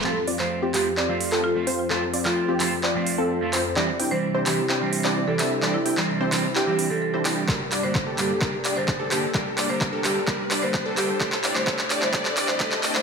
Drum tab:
HH |--o---o---o---o-|--o---o---o---o-|--o---o---o---o-|--o---o---o---o-|
CP |x--x--x-x--x----|x--x--x-x-----x-|x-----x-x--x--x-|x--x--x-x-----x-|
BD |----------------|----------------|----------------|----------------|

HH |--o---o---o---o-|--o---o---o---o-|--o---o---o---o-|
CP |x-x-x-x-x-x-x-x-|x-x-x-x-x-x-x-x-|xxxxxxxxxxxxxxxx|
BD |o---o---o---o---|o---o---o---o---|o---o---o---o---|